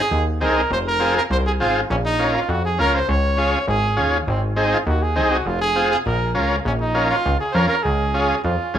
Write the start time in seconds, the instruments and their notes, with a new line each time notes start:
0.00 trumpet G#4
0.11 analog synth bass D#2
0.41 analog synth bass C2, transistor combo organ C4 D#4 G#4, trumpet A#4
0.71 analog synth bass F1, trumpet C5
0.88 trumpet A#4
1.00 transistor combo organ C4 F4 G#4
1.17 trumpet A#4
1.30 analog synth bass C2, trumpet C5
1.46 trumpet G#4
1.60 analog synth bass G#1, transistor combo organ C4 F4 G#4, trumpet F4
1.90 analog synth bass A#1, trumpet C#4
2.05 trumpet D#4
2.19 transistor combo organ C#4 F4 A#4
2.35 trumpet F4
2.49 analog synth bass F2, trumpet F#4
2.65 trumpet G#4
2.79 analog synth bass C#2, transistor combo organ C#4 F4 A#4, trumpet A#4
2.95 trumpet C5
3.09 analog synth bass C#2, trumpet C#5
3.37 transistor combo organ C#4 F4 G#4
3.68 analog synth bass G#1, trumpet G#4
3.97 analog synth bass D#2, transistor combo organ C#4 F4 G#4
4.27 analog synth bass G#1, trumpet C4
4.56 transistor combo organ C4 D#4 G#4
4.73 trumpet F4
4.87 analog synth bass D#2, trumpet F#4
5.03 trumpet G#4
5.16 analog synth bass C2, transistor combo organ C4 D#4 G#4
5.31 trumpet F#4
5.46 analog synth bass F1, trumpet F4
5.61 trumpet G#4
5.75 transistor combo organ C4 F4 G#4
5.91 trumpet G#4
6.06 analog synth bass A#1, trumpet A#4
6.35 analog synth bass C#2, transistor combo organ C#4 F4 A#4
6.65 analog synth bass A#1, trumpet C#4
6.81 trumpet D#4
6.94 transistor combo organ C#4 F4 A#4
7.10 trumpet F4
7.26 analog synth bass C#2
7.40 trumpet G#4
7.52 analog synth bass F2, transistor combo organ C#4 F4 A#4, trumpet A#4 C5
7.69 trumpet A#4
7.83 analog synth bass C#2, trumpet G#4
8.14 transistor combo organ C#4 F4 G#4
8.44 analog synth bass F2, trumpet F4
8.74 analog synth bass G#1, transistor combo organ C#4 F4 G#4